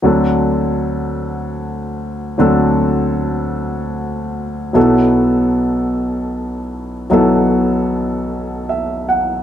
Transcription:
<<
  \new Staff \with { instrumentName = "Grand piano" } { \time 6/8 \key d \mixolydian \tempo 4. = 51 r2. | r2. | r2. | r2 e''8 fis''8 | }
  \new Staff \with { instrumentName = "Grand piano" } { \clef bass \time 6/8 \key d \mixolydian <d, d fis c' d' a'>2. | <d, d fis c' d' a'>2. | <b,, b, fis b e' a'>2. | <b,, b, fis b e' a'>2. | }
>>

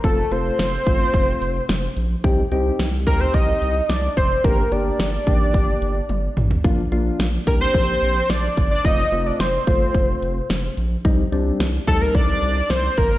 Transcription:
<<
  \new Staff \with { instrumentName = "Analog synth lead" } { \time 4/4 \key f \mixolydian \tempo 4 = 109 a'8 c''2. r8 | r4. bes'16 c''16 ees''4 d''8 c''8 | bes'8 d''2. r8 | r4. bes'16 c''4~ c''16 d''8. d''16 |
ees''8. d''16 c''2~ c''8 r8 | r4. a'16 bes'16 d''4 c''8 bes'8 | }
  \new Staff \with { instrumentName = "Synth keys" } { \time 4/4 \key f \mixolydian <a c' f'>8 <a c' f'>8 r8 <a c' f'>4. r4 | <c' ees' g'>8 <c' ees' g'>8 r8 <c' ees' g'>4. r4 | <bes d' g'>8 <bes d' g'>8 r8 <bes d' g'>4. r4 | <bes d' f'>8 <bes d' f'>8 r8 <bes d' g'>4. r4 |
<a c' f'>8 <a c' f'>8 r8 <a c' f'>4. r4 | <g c' ees'>8 <g c' d'>8 r8 <g c' ees'>4. r4 | }
  \new Staff \with { instrumentName = "Analog synth bass" } { \clef bass \time 4/4 \key f \mixolydian f,,8 f,,8 f,,8 g,,8 f,,8 f,,8 f,,8 bes,,8 | c,8 c,8 c,8 d,8 c,8 c,8 c,8 f,,8 | g,,8 g,,8 g,,8 a,,8 g,,8 g,,8 g,,8 a,,8 | bes,,8 bes,,8 bes,,8 c,8 bes,,8 bes,,8 bes,,8 g,,8 |
f,,8 f,,8 f,,8 g,,8 f,,8 f,,8 f,,8 bes,,8 | c,8 c,8 c,8 d,8 c,8 c,8 c,8 g,,8 | }
  \new DrumStaff \with { instrumentName = "Drums" } \drummode { \time 4/4 <hh bd>8 hh8 <hh sn>8 <hh bd>8 <hh bd>8 hh8 <hh sn>8 hh8 | <hh bd>8 hh8 <hh sn>8 <hh bd>8 <hh bd>8 hh8 <hh sn>8 <hh bd>8 | <hh bd>8 hh8 <hh sn>8 <hh bd>8 <hh bd>8 hh8 <hh tommh>8 <hh toml>16 tomfh16 | <hh bd>8 hh8 <hh sn>8 <hh bd>8 <hh bd>8 hh8 <hh sn>8 <hh bd>8 |
<hh bd>8 hh8 <hh sn>8 <hh bd>8 <hh bd>8 hh8 <hh sn>8 hh8 | <hh bd>8 hh8 <hh sn>8 <hh bd>8 <hh bd>8 hh8 <hh sn>8 <hh bd>8 | }
>>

